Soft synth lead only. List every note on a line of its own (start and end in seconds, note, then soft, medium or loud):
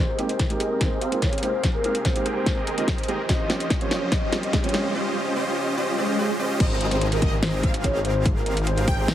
0.00 0.21 C5 loud
0.30 0.44 C5 medium
0.50 0.83 A#4 loud
0.81 1.24 C5 loud
1.22 1.38 C#5 medium
1.43 1.66 C5 medium
1.74 1.97 A#4 medium
2.05 2.28 C5 medium
2.36 2.59 C5 loud
2.67 2.90 A#4 loud
2.98 3.28 C5 loud
3.29 3.52 D#5 medium
3.60 3.75 D#5 medium
3.81 4.10 C#5 medium
4.12 4.35 D#5 loud
4.43 4.58 D#5 medium
4.64 4.93 C#5 medium
6.60 6.83 C5 loud
6.91 7.06 C5 medium
7.12 7.35 A#4 loud
7.43 7.73 C5 loud
7.84 7.99 C#5 medium
8.05 8.28 C5 medium
8.36 8.59 A#4 medium
8.67 8.90 C5 loud
8.98 9.14 C5 loud